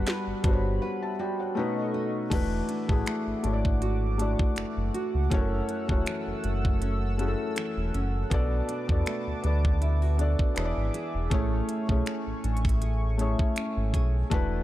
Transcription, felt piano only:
0.00 0.31 G3 loud
0.00 0.31 B3 loud
0.00 0.32 D4 loud
0.00 0.32 F#4 loud
0.00 0.33 B4 loud
0.42 1.10 G3 medium
0.42 1.10 B3 medium
0.42 1.11 D4 medium
0.42 1.11 F#4 medium
0.46 0.52 C5 medium
0.53 0.81 C#5 medium
0.82 1.01 C#5 medium
0.82 1.01 F#5 medium
1.02 1.19 E5 medium
1.02 1.19 A5 medium
1.20 1.39 D5 medium
1.20 1.39 G5 medium
1.40 1.76 C#5 medium
1.40 1.75 F#5 medium
1.55 2.22 A3 medium
1.55 2.23 C#4 medium
1.55 2.23 D#4 medium
1.55 2.24 F#4 medium
1.59 2.24 B4 medium
2.30 2.81 A3 loud
2.30 2.82 D4 medium
2.30 2.82 E4 medium
2.30 2.83 F#4 medium
2.34 2.83 B4 loud
2.88 3.37 A3 medium
2.88 3.37 D4 medium
2.88 3.38 E4 medium
2.88 3.39 F#4 medium
2.92 3.39 G#4 medium
3.43 4.10 A3 medium
3.43 4.10 D4 medium
3.43 4.11 E4 medium
3.43 4.11 F#4 medium
3.43 3.52 C#5 medium
3.53 4.15 D5 medium
4.18 5.18 A3 medium
4.18 5.19 D4 medium
4.18 5.19 E4 medium
4.18 5.20 F#4 medium
4.22 5.20 D5 medium
5.30 5.81 A3 loud
5.30 5.82 C#4 loud
5.30 5.82 E4 medium
5.30 5.83 F#4 loud
5.34 5.83 C#5 loud
5.88 7.03 A3 medium
5.88 7.04 C#4 medium
5.88 7.04 E4 medium
5.88 7.05 F#4 medium
5.92 7.06 C#5 medium
7.17 8.18 A3 medium
7.17 8.19 C#4 medium
7.17 8.19 E4 medium
7.17 8.20 F#4 medium
7.22 7.27 G#4 medium
7.28 8.23 A4 medium
8.30 8.81 B3 loud
8.30 8.82 D4 loud
8.30 8.82 F#4 medium
8.30 8.83 A4 medium
8.34 8.83 D5 loud
8.88 9.37 B3 medium
8.88 9.37 D4 medium
8.88 9.38 F#4 medium
8.88 9.38 A4 medium
8.92 9.39 D5 medium
9.43 10.10 B3 medium
9.43 10.10 D4 medium
9.43 10.11 F#4 medium
9.43 10.11 A4 medium
9.47 10.12 D5 medium
10.17 10.53 B3 medium
10.17 10.54 D4 medium
10.17 10.57 F#4 medium
10.17 10.57 A4 medium
10.21 10.58 D5 medium
10.55 11.22 B3 medium
10.55 11.23 D4 medium
10.55 11.23 E4 medium
10.55 11.24 G#4 medium
10.59 10.65 C#5 medium
10.65 11.27 D5 loud
11.30 11.81 A3 loud
11.30 11.81 C#4 medium
11.30 11.82 E4 loud
11.30 11.83 G#4 medium
11.34 11.83 C#5 loud
11.88 13.04 A3 medium
11.88 13.04 C#4 medium
11.88 13.05 E4 medium
11.88 13.05 G#4 medium
11.92 13.06 C#5 medium
13.18 14.18 A3 medium
13.18 14.19 C#4 medium
13.18 14.19 E4 medium
13.18 14.20 G#4 medium
13.22 14.20 C#5 medium
14.30 14.63 A3 loud
14.30 14.63 D4 loud
14.30 14.63 E4 medium
14.30 14.63 F#4 medium
14.30 14.63 B4 loud

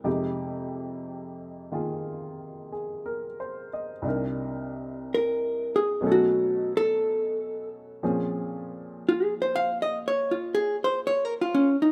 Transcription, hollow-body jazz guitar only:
5.14 5.74 A#4 medium
5.76 6.05 G#4 medium
6.12 6.72 F#4 medium
6.77 7.68 A4 medium
9.09 9.24 F4 medium
9.24 9.34 G#4 medium
9.42 9.70 C5 medium
9.56 9.77 F5 loud
9.82 9.98 D#5 medium
10.08 10.36 C#5 medium
10.31 10.64 F4 medium
10.55 10.76 G#4 medium
10.84 10.99 C5 medium
11.07 11.25 C#5 loud
11.25 11.33 A#4 medium
11.41 11.69 F4 medium
11.55 11.75 C#4 medium
11.82 11.92 D#4 medium

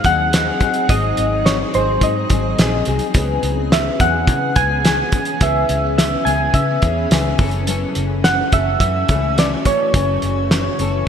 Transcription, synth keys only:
0.06 0.92 F#5 loud
0.90 1.47 D#5 loud
1.46 1.58 C#5 medium
1.75 2.03 C5 medium
2.03 2.83 D#5 medium
3.73 4.01 E5 medium
4.01 4.58 F#5 loud
4.56 5.43 G#5 loud
5.42 5.97 E5 loud
5.98 6.27 E5 medium
6.25 6.54 G#5 loud
6.54 7.35 E5 medium
8.24 8.53 F#5 loud
8.53 8.79 E5 loud
8.80 9.39 E5 loud
9.39 9.51 D5 medium
9.66 11.08 C#5 medium

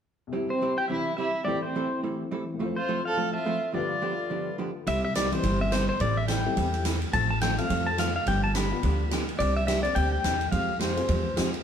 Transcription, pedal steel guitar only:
0.50 0.77 C5 medium
0.78 0.88 G5 medium
0.88 1.16 E5 medium
1.17 1.47 E5 medium
1.45 1.63 D5 medium
1.62 2.00 C5 medium
2.76 3.06 C5 medium
3.05 3.33 F5 medium
3.33 3.74 E5 medium
3.74 4.55 D5 medium
4.88 5.03 E5 medium
5.05 5.15 E5 medium
5.16 5.33 D5 medium
5.33 5.59 C5 medium
5.61 5.73 E5 medium
5.72 5.88 C5 medium
5.89 6.01 C5 medium
6.01 6.16 D5 medium
6.17 6.28 E5 medium
6.28 6.85 G5 medium
7.13 7.29 A5 medium
7.31 7.41 A5 medium
7.42 7.59 G5 medium
7.58 7.87 F5 medium
7.87 7.98 A5 medium
7.99 8.14 F5 medium
8.16 8.27 F5 medium
8.28 8.43 G5 medium
8.44 8.55 A5 medium
8.55 9.11 B5 medium
9.39 9.56 D5 medium
9.57 9.66 E5 medium
9.67 9.83 E5 medium
9.83 9.96 D5 medium
9.95 10.11 G5 loud
10.12 10.51 G5 loud
10.52 10.78 F5 medium
10.80 11.50 C5 medium

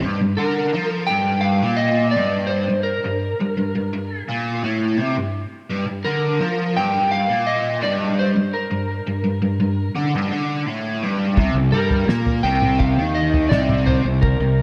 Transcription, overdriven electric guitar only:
0.03 0.19 G2 loud
0.21 0.39 G2 medium
0.38 0.72 D3 medium
0.74 1.08 F3 loud
1.09 1.61 G2 medium
1.62 2.14 A#2 medium
2.16 2.68 G2 loud
2.69 2.97 G2 medium
3.04 3.32 G2 medium
3.40 3.56 G2 medium
3.57 3.74 G2 medium
3.75 3.92 G2 medium
3.93 4.21 G2 medium
4.28 4.62 A#2 medium
4.64 4.98 A2 loud
4.99 5.15 C3 medium
5.16 5.45 G2 medium
5.70 5.86 G2 loud
5.87 6.05 G2 medium
6.05 6.40 D3 medium
6.40 6.75 F3 loud
6.76 7.28 G2 loud
7.29 7.81 A#2 loud
7.81 8.34 G2 loud
8.36 8.64 G2 medium
8.71 8.99 G2 medium
9.07 9.23 G2 medium
9.24 9.41 G2 medium
9.42 9.59 G2 medium
9.60 9.89 G2 medium
9.95 10.12 D3 medium
10.14 10.31 G2 medium
10.31 10.66 D3 loud
10.68 11.02 A2 medium
11.03 11.37 G2 loud
11.38 11.55 C3 loud
11.56 11.74 C3 medium
11.74 12.08 G3 medium
12.09 12.43 A#3 loud
12.44 12.97 C3 loud
12.98 13.51 D#3 loud
13.51 14.04 C3 loud
14.06 14.34 C3 medium
14.41 14.62 C3 medium

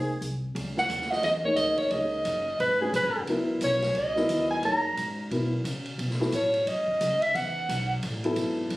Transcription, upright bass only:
0.00 0.19 C2 medium
0.21 0.53 C2 medium
0.55 0.89 C#2 medium
0.89 1.22 D#2 medium
1.23 1.56 E2 medium
1.57 1.90 D2 medium
1.91 2.25 C#2 medium
2.25 2.58 F#1 medium
2.60 2.93 G#1 medium
2.93 3.05 A#1 medium
3.05 3.15 G#1 medium
3.16 3.27 F#1 medium
3.28 3.61 C#2 medium
3.62 3.94 B1 medium
3.95 4.28 C#2 medium
4.29 4.62 D#2 medium
4.62 4.96 F#2 medium
4.97 5.30 G#2 medium
5.31 5.64 B2 medium
5.64 5.98 C#3 medium
5.98 6.31 B2 medium
6.32 6.66 A2 medium
6.66 6.99 F#2 medium
7.01 7.34 C#2 medium
7.34 7.67 E2 medium
7.69 8.02 B1 loud
8.03 8.36 A1 medium
8.36 8.69 G#1 medium
8.71 8.77 F#1 medium

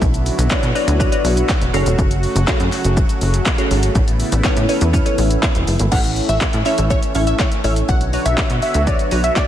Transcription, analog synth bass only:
0.02 0.30 B1 loud
0.38 0.48 B1 medium
0.63 0.72 B2 loud
0.88 1.06 D2 loud
1.25 1.43 B1 medium
1.61 1.71 E1 medium
1.74 1.83 F#1 loud
1.86 1.96 E1 medium
1.99 2.27 F#1 loud
2.36 2.45 F#1 loud
2.48 2.53 F#2 soft
2.60 2.70 F#2 loud
2.85 3.03 F#1 medium
3.22 3.40 F#1 medium
3.71 3.90 G#1 medium
3.95 4.23 A1 loud
4.32 4.42 A1 loud
4.57 4.66 A2 loud
4.82 5.00 E2 medium
5.18 5.37 A1 loud
5.55 5.65 E1 loud
5.68 5.77 F#1 medium
5.80 5.89 G#1 medium
5.92 6.20 A1 loud
6.29 6.38 A1 medium
6.54 6.63 A2 loud
6.78 6.97 A1 medium
7.15 7.34 A1 medium
7.64 7.83 A1 loud
7.89 8.17 B1 loud
8.26 8.35 B1 medium
8.50 8.60 B2 medium
8.75 8.94 D2 loud
9.12 9.31 B1 medium

